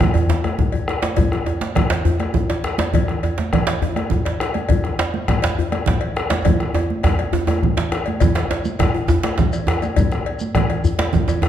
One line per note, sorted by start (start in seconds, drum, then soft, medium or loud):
0.00 bombo rim medium
0.00 bombo low loud
0.00 cowbell soft
0.00 djembe tone medium
0.00 low conga medium
0.14 bombo rim soft
0.14 cowbell soft
0.14 djembe slap soft
0.14 djembe tone medium
0.14 high conga soft
0.14 djembe bass medium
0.29 bombo rim soft
0.29 djembe slap soft
0.29 djembe slap medium
0.29 high conga soft
0.29 djembe bass medium
0.44 bombo rim medium
0.44 cowbell soft
0.44 high conga medium
0.44 djembe bass soft
0.59 bombo low medium
0.59 low conga medium
0.59 djembe bass soft
0.72 bombo rim soft
0.72 cowbell soft
0.72 high conga soft
0.72 djembe bass medium
0.88 bombo rim loud
0.88 djembe slap medium
0.88 high conga soft
1.02 bombo rim soft
1.02 cowbell soft
1.02 djembe slap medium
1.02 high conga medium
1.17 bombo low loud
1.17 cowbell medium
1.17 high conga soft
1.17 djembe tone medium
1.17 low conga medium
1.17 djembe bass medium
1.32 bombo rim medium
1.32 djembe slap medium
1.46 cowbell soft
1.46 djembe tone medium
1.61 djembe slap medium
1.61 high conga medium
1.75 bombo rim medium
1.75 bombo low medium
1.75 cowbell soft
1.75 djembe slap medium
1.75 low conga medium
1.90 cowbell soft
1.90 djembe slap medium
1.90 djembe tone medium
2.05 djembe tone medium
2.05 djembe bass medium
2.20 bombo rim medium
2.20 cowbell soft
2.20 djembe slap medium
2.20 high conga medium
2.34 bombo low medium
2.34 djembe tone medium
2.34 low conga medium
2.50 cowbell soft
2.50 djembe slap medium
2.64 bombo rim medium
2.64 djembe slap medium
2.78 bombo rim soft
2.78 cowbell soft
2.78 djembe slap soft
2.78 djembe slap medium
2.78 high conga medium
2.78 djembe tone medium
2.93 bombo low medium
2.93 cowbell medium
2.93 high conga soft
2.93 djembe tone medium
2.93 low conga medium
2.93 djembe bass medium
3.08 bombo rim medium
3.08 djembe slap soft
3.23 cowbell soft
3.23 djembe tone medium
3.38 djembe slap medium
3.38 high conga medium
3.53 bombo rim medium
3.53 bombo low medium
3.53 cowbell soft
3.53 djembe slap medium
3.53 low conga medium
3.67 cowbell soft
3.67 djembe slap loud
3.67 djembe tone medium
3.82 djembe tone medium
3.82 djembe bass medium
3.96 bombo rim medium
3.96 cowbell soft
3.96 djembe slap soft
3.96 high conga medium
4.10 bombo low medium
4.10 djembe tone medium
4.10 low conga medium
4.25 cowbell soft
4.25 djembe slap medium
4.40 bombo rim medium
4.40 djembe slap medium
4.54 bombo rim soft
4.54 cowbell soft
4.54 djembe slap soft
4.54 high conga medium
4.54 djembe tone medium
4.69 bombo low medium
4.69 cowbell medium
4.69 high conga soft
4.69 low conga medium
4.69 djembe bass medium
4.84 bombo rim medium
4.84 djembe slap medium
4.99 cowbell soft
4.99 djembe slap medium
5.14 high conga medium
5.28 bombo rim medium
5.28 bombo low loud
5.28 cowbell soft
5.28 djembe slap medium
5.28 low conga medium
5.42 cowbell soft
5.42 djembe slap medium
5.42 djembe tone medium
5.59 djembe bass medium
5.72 bombo rim medium
5.72 cowbell soft
5.72 djembe slap medium
5.72 high conga medium
5.86 bombo low medium
5.86 djembe slap medium
5.86 low conga medium
6.01 cowbell medium
6.16 bombo rim medium
6.16 djembe slap medium
6.30 bombo rim soft
6.30 cowbell soft
6.30 djembe slap medium
6.30 djembe slap soft
6.30 high conga medium
6.30 djembe tone medium
6.45 bombo rim soft
6.45 bombo low loud
6.45 cowbell medium
6.45 djembe tone medium
6.45 high conga soft
6.45 djembe bass medium
6.45 low conga medium
6.60 bombo rim medium
6.60 djembe slap medium
6.60 high conga soft
6.74 bombo rim soft
6.74 cowbell medium
6.74 djembe slap soft
6.74 djembe tone loud
6.90 djembe slap soft
6.90 high conga medium
7.03 bombo rim medium
7.03 bombo low medium
7.03 cowbell soft
7.03 djembe slap medium
7.03 djembe tone loud
7.19 cowbell soft
7.19 djembe tone medium
7.33 djembe tone loud
7.33 djembe bass medium
7.47 bombo rim medium
7.47 cowbell soft
7.47 djembe slap soft
7.47 djembe tone medium
7.47 high conga medium
7.62 bombo rim soft
7.62 bombo low medium
7.62 djembe slap soft
7.62 low conga medium
7.77 cowbell soft
7.77 djembe slap medium
7.77 djembe slap soft
7.92 bombo rim medium
7.92 djembe slap medium
8.06 bombo rim soft
8.06 cowbell soft
8.06 djembe tone medium
8.06 high conga medium
8.20 bombo low medium
8.20 cowbell medium
8.20 djembe tone loud
8.20 high conga soft
8.20 djembe bass medium
8.20 low conga medium
8.20 shekere medium
8.35 bombo rim medium
8.35 djembe slap medium
8.35 shekere soft
8.51 cowbell soft
8.51 djembe slap medium
8.65 high conga medium
8.65 shekere soft
8.79 bombo rim loud
8.79 bombo low loud
8.79 cowbell soft
8.79 djembe slap medium
8.79 djembe tone medium
8.79 low conga medium
8.94 djembe tone medium
9.08 djembe tone loud
9.08 djembe bass medium
9.08 shekere medium
9.23 bombo rim medium
9.23 cowbell soft
9.23 djembe slap medium
9.23 high conga medium
9.38 bombo low medium
9.38 djembe slap medium
9.38 low conga medium
9.38 shekere soft
9.53 cowbell soft
9.53 shekere soft
9.67 bombo rim loud
9.67 djembe slap medium
9.67 djembe tone medium
9.82 bombo rim soft
9.82 cowbell soft
9.82 djembe slap soft
9.82 djembe tone medium
9.82 high conga medium
9.82 shekere soft
9.96 bombo low loud
9.96 cowbell medium
9.96 high conga soft
9.96 djembe bass medium
9.96 low conga medium
9.96 shekere medium
10.11 bombo rim medium
10.11 djembe slap medium
10.11 shekere soft
10.26 cowbell soft
10.39 high conga medium
10.39 shekere soft
10.55 bombo rim loud
10.55 bombo low loud
10.55 cowbell soft
10.55 djembe slap medium
10.55 low conga medium
10.70 cowbell soft
10.70 djembe tone medium
10.84 djembe bass medium
10.84 shekere medium
10.99 bombo rim medium
10.99 cowbell soft
10.99 djembe slap loud
10.99 high conga medium
11.13 bombo low medium
11.13 djembe tone medium
11.13 low conga medium
11.13 shekere soft
11.28 cowbell soft
11.28 djembe tone medium
11.28 shekere soft
11.42 bombo rim medium
11.42 djembe slap medium
11.42 djembe tone medium